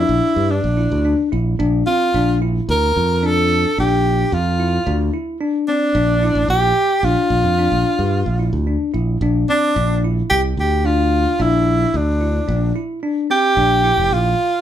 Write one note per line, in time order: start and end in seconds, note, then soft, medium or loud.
0.00 0.42 D4 medium
0.00 0.52 E4 medium
0.09 0.20 A#1 medium
0.36 0.59 G2 medium
0.51 1.32 D4 medium
0.64 0.86 A#1 medium
0.77 1.00 E4 medium
0.92 1.14 D2 medium
1.05 1.28 D4 medium
1.32 1.55 A#1 medium
1.32 1.55 E4 medium
1.59 1.82 A#1 medium
1.59 1.82 D4 medium
1.86 2.10 C4 medium
1.86 2.37 F4 loud
2.14 2.59 A#1 medium
2.14 2.38 D4 medium
2.42 2.88 E4 medium
2.69 2.91 D2 medium
2.69 3.28 A#4 medium
2.96 3.64 F2 medium
3.23 3.70 D4 medium
3.23 3.79 A4 medium
3.78 4.23 A#1 medium
3.78 4.25 D4 medium
3.78 4.35 G4 medium
4.32 4.77 F2 medium
4.32 5.14 F4 medium
4.60 4.83 E4 medium
4.86 5.09 D2 medium
4.86 5.10 D4 medium
5.14 5.37 E4 medium
5.41 5.64 D4 medium
5.68 5.92 C4 medium
5.68 6.46 D4 medium
5.95 6.29 A#1 medium
5.95 6.19 D4 medium
6.23 6.70 E4 medium
6.35 6.47 A1 medium
6.48 6.72 A#1 medium
6.48 7.06 G4 medium
7.03 7.15 A#1 medium
7.03 7.51 D4 medium
7.03 8.68 F4 medium
7.30 7.42 A#1 medium
7.44 7.67 F2 medium
7.59 8.06 D4 medium
7.72 7.83 A#1 medium
7.99 8.22 G2 medium
8.26 8.49 A#1 medium
8.39 8.63 E4 medium
8.53 8.76 D2 medium
8.67 8.91 D4 medium
8.94 9.17 A#1 medium
8.94 9.18 E4 medium
9.21 9.44 A#1 medium
9.21 9.45 D4 medium
9.49 9.72 C4 medium
9.49 10.00 D4 medium
9.76 10.21 A#1 medium
9.76 10.00 D4 medium
10.04 10.51 E4 medium
10.30 10.53 C2 medium
10.30 10.42 G4 medium
10.57 11.25 D2 medium
10.57 10.87 G4 medium
10.85 11.32 D4 medium
10.85 11.43 F4 medium
11.39 11.85 A#1 medium
11.39 11.86 D4 medium
11.39 11.98 E4 medium
11.94 12.39 D2 medium
11.94 12.77 D4 medium
12.21 12.44 E4 medium
12.48 12.71 A#1 medium
12.48 12.71 D4 medium
12.76 12.99 E4 medium
13.03 13.26 D4 medium
13.30 13.53 C4 medium
13.30 14.14 G4 loud
13.57 13.91 A#1 medium
13.57 13.80 D4 medium
13.84 14.31 E4 medium
13.97 14.09 F1 medium
14.11 14.34 A#1 medium
14.11 14.61 F4 medium